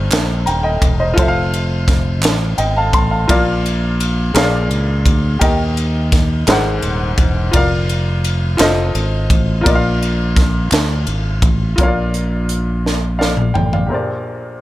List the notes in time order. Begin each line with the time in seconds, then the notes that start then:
Already playing: G2 D#4 G4 C5 D#5
0.12 A#1, snare, clap, ride bell
0.46 D#1 G5 A#5, ride bell
0.63 D#5 G5
0.81 E1, kick, ride bell
1.00 C5 D#5
1.14 F1 F4 A4
1.18 C5, kick, ride bell
1.22 E5
1.28 F5
1.54 ride bell
1.88 kick, snare, ride bell
2.22 A1, snare, clap, ride bell
2.58 G#1 D#5 G5, ride bell
2.77 F5 A5
2.93 A1 A5 C6, kick, ride bell
3.11 F5 A5
3.28 A#1 A#2 F4 A#4 D5 F5, kick, ride bell
3.66 ride bell
4.00 ride bell
4.34 A#1 A#2 G#4 A#4 C#5 F5, snare, clap, ride bell
4.43 D5
4.70 C#2, ride bell
5.05 D2, kick, ride bell
5.39 D#2 D#3 G4 A#4 D#5, kick, ride bell
5.43 G5
5.77 ride bell
6.12 kick, snare, ride bell
6.47 G#1 G#2 G#4 A#4 C5, snare, clap, ride bell
6.51 F#5
6.82 D#1, ride bell
7.18 E1, kick, ride bell
7.51 F1 F4 A#4 D5, kick, ride bell
7.56 F5
7.89 ride bell
8.24 ride bell
8.57 F1 F4 A4 C5, snare, clap, ride bell
8.61 D#5
8.95 G#1, ride bell
9.30 A1, kick, ride bell
9.61 A#2 F4 A#4
9.66 A#1 D5 D#5, kick, ride bell
9.75 F5
10.03 ride bell
10.37 kick, snare, ride bell
10.72 D2, snare, clap, ride bell
11.07 G#1, ride bell
11.42 A1, kick, ride bell
11.76 A#1 A#2 F4 A#4, kick, closed hi-hat
11.81 C#5 F5
11.87 D5
12.14 closed hi-hat
12.49 closed hi-hat
12.86 snare
13.19 D5 F5, snare
13.37 mid tom
13.54 A1 G5, floor tom
13.73 D5 F5, floor tom
13.86 A#1 A#2 G4 A#4
13.91 C5 D5